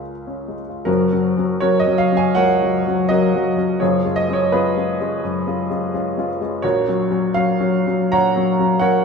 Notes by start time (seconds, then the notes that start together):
Already playing: C#2 G#3 C#4 F4
0.27 C#4
0.48 G#3
0.69 F4
0.85 F#1 F#2 C#4 F#4 A#4
1.13 F#3 C#4 F#4
1.37 F#3 C#4 F#4
1.60 F#3 C#4 F#4 A#4 C#5
1.80 D#5
1.86 F#3 C#4 F#4
1.98 F5
2.12 F#3 C#4 F#4
2.17 G#5
2.35 C#2 A#4 C#5 F#5
2.62 F#3 C#4 F#4
2.87 F#3 C#4 F#4
3.09 F#3 C#4 F#4 A#4 D#5
3.35 F#3 C#4 F#4
3.57 F#3 C#4 F#4
3.80 F#1 F#2 F4 G#4 C#5
4.05 G#3 C#4 F4
4.16 D#5
4.29 G#3 C#4 F4
4.33 C#5
4.52 G#3 C#4 F4 G#4 B4
4.76 G#3 C#4 F4
5.01 G#3 C#4 F4
5.24 F#2
5.47 G#3 C#4 F4
5.70 G#3 C#4 F4
5.93 G#3 C#4 F4
6.17 G#3 C#4 F4
6.41 G#3 C#4 F4
6.62 A#1 F#4 A#4 C#5
6.88 F#3 C#4 F#4
7.11 F#3 C#4 F#4
7.34 F#3 C#4 F#4 F5
7.60 F#3 C#4 F#4
7.86 F#3 C#4 F#4
8.12 A#1 C#5 F#5 A#5
8.36 F#3 C#4 F#4
8.59 F#3 C#4 F#4
8.79 F#3 C#4 F#4 A#4 C#5 F#5